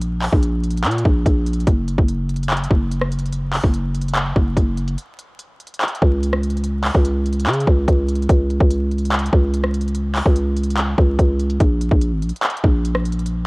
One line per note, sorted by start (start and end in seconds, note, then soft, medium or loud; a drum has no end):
0.00 0.29 A#1 loud
0.00 closed hi-hat medium
0.22 clap medium
0.22 open hi-hat medium
0.33 0.86 A#1 loud
0.33 kick loud
0.43 closed hi-hat medium
0.64 closed hi-hat soft
0.71 closed hi-hat soft
0.77 closed hi-hat medium
0.84 1.04 A#2 loud
0.84 clap loud
0.84 closed hi-hat medium
0.91 closed hi-hat medium
0.98 closed hi-hat medium
1.05 1.25 A#1 loud
1.05 kick loud
1.26 1.66 A#1 loud
1.26 kick medium
1.26 closed hi-hat medium
1.46 closed hi-hat medium
1.53 closed hi-hat soft
1.60 closed hi-hat soft
1.67 1.97 F#1 loud
1.67 kick loud
1.67 closed hi-hat medium
1.88 closed hi-hat medium
1.98 2.68 F#1 loud
1.98 kick loud
2.08 closed hi-hat medium
2.29 closed hi-hat soft
2.36 closed hi-hat soft
2.43 closed hi-hat medium
2.50 clap loud
2.50 closed hi-hat medium
2.57 closed hi-hat medium
2.64 closed hi-hat medium
2.71 3.60 F#1 loud
2.71 kick loud
2.92 closed hi-hat medium
3.02 cross-stick medium
3.12 closed hi-hat medium
3.19 closed hi-hat soft
3.26 closed hi-hat soft
3.33 closed hi-hat medium
3.53 clap loud
3.53 open hi-hat medium
3.64 4.33 F#1 loud
3.64 kick loud
3.74 closed hi-hat medium
3.95 closed hi-hat medium
4.02 closed hi-hat medium
4.09 closed hi-hat medium
4.15 clap loud
4.15 closed hi-hat medium
4.36 4.56 F#1 loud
4.36 kick loud
4.57 4.97 F#1 loud
4.57 kick medium
4.57 closed hi-hat medium
4.77 closed hi-hat soft
4.88 closed hi-hat soft
4.98 closed hi-hat medium
5.19 closed hi-hat medium
5.39 closed hi-hat medium
5.60 closed hi-hat soft
5.67 closed hi-hat soft
5.74 closed hi-hat medium
5.81 clap loud
5.81 closed hi-hat medium
5.88 closed hi-hat medium
5.95 closed hi-hat medium
6.02 6.91 C#2 loud
6.02 kick loud
6.23 closed hi-hat medium
6.33 cross-stick medium
6.43 closed hi-hat medium
6.50 closed hi-hat soft
6.57 closed hi-hat soft
6.64 closed hi-hat medium
6.84 clap loud
6.84 open hi-hat medium
6.95 7.48 C#2 loud
6.95 kick loud
7.05 closed hi-hat medium
7.26 closed hi-hat soft
7.33 closed hi-hat soft
7.40 closed hi-hat medium
7.46 7.66 C#3 loud
7.46 clap loud
7.46 closed hi-hat medium
7.53 closed hi-hat medium
7.60 closed hi-hat medium
7.67 7.87 C#2 loud
7.67 kick loud
7.88 8.28 C#2 loud
7.88 kick medium
7.88 closed hi-hat medium
8.09 closed hi-hat medium
8.15 closed hi-hat soft
8.22 closed hi-hat soft
8.29 8.59 C#2 loud
8.29 kick loud
8.29 closed hi-hat medium
8.50 closed hi-hat medium
8.60 9.30 C#2 loud
8.60 kick loud
8.70 closed hi-hat medium
8.91 closed hi-hat soft
8.98 closed hi-hat soft
9.05 closed hi-hat medium
9.12 clap loud
9.12 closed hi-hat medium
9.19 closed hi-hat medium
9.26 closed hi-hat medium
9.33 10.22 C#2 loud
9.33 kick loud
9.54 closed hi-hat medium
9.64 cross-stick medium
9.74 closed hi-hat medium
9.81 closed hi-hat soft
9.88 closed hi-hat soft
9.95 closed hi-hat medium
10.16 clap medium
10.16 open hi-hat medium
10.26 10.95 C#2 loud
10.26 kick loud
10.36 closed hi-hat medium
10.57 closed hi-hat medium
10.64 closed hi-hat medium
10.71 closed hi-hat medium
10.78 clap loud
10.78 closed hi-hat medium
10.98 11.18 C#2 loud
10.98 kick loud
11.19 11.59 C#2 loud
11.19 kick medium
11.19 closed hi-hat medium
11.40 closed hi-hat soft
11.50 closed hi-hat soft
11.60 11.90 A#1 loud
11.60 kick loud
11.60 closed hi-hat medium
11.81 closed hi-hat medium
11.91 12.13 A#1 loud
11.91 kick loud
12.01 closed hi-hat medium
12.12 12.24 G#1 loud
12.22 12.32 A#1 medium
12.22 closed hi-hat soft
12.29 closed hi-hat soft
12.36 closed hi-hat medium
12.43 clap loud
12.43 closed hi-hat medium
12.50 closed hi-hat medium
12.57 closed hi-hat medium
12.64 13.47 A#1 loud
12.64 kick loud
12.85 closed hi-hat medium
12.95 cross-stick medium
13.05 closed hi-hat medium
13.12 closed hi-hat soft
13.19 closed hi-hat soft
13.26 closed hi-hat medium